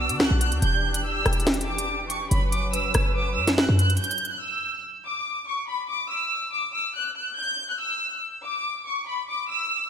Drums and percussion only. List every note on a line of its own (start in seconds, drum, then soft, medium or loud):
0.09 closed hi-hat medium
0.20 snare loud
0.41 closed hi-hat medium
0.52 closed hi-hat medium
0.62 closed hi-hat medium
0.94 closed hi-hat medium
1.26 cross-stick loud
1.26 closed hi-hat soft
1.33 closed hi-hat medium
1.40 closed hi-hat medium
1.47 snare loud
1.47 closed hi-hat medium
1.54 closed hi-hat medium
1.61 closed hi-hat medium
1.78 closed hi-hat medium
2.10 closed hi-hat medium
2.31 closed hi-hat medium
2.52 closed hi-hat medium
2.73 closed hi-hat medium
2.94 cross-stick loud
2.94 closed hi-hat medium
3.47 snare medium
3.47 closed hi-hat medium
3.58 snare loud
3.79 closed hi-hat medium
3.90 closed hi-hat medium
3.97 closed hi-hat medium
4.04 closed hi-hat medium
4.11 closed hi-hat medium
4.18 closed hi-hat soft
4.25 closed hi-hat soft